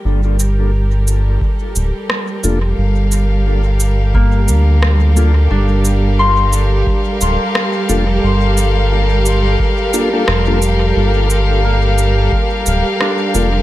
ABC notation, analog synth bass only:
X:1
M:4/4
L:1/8
Q:"Swing 16ths" 1/4=88
K:Gm
V:1 name="Analog synth bass" clef=bass
G,,,4 z D,,, z F,,, | G,,,4- G,,, D,,3 | G,,,4 z D,,, z F,,, | G,,,4 z2 F,,,2 |
G,,,4 z D,,, z F,,, |]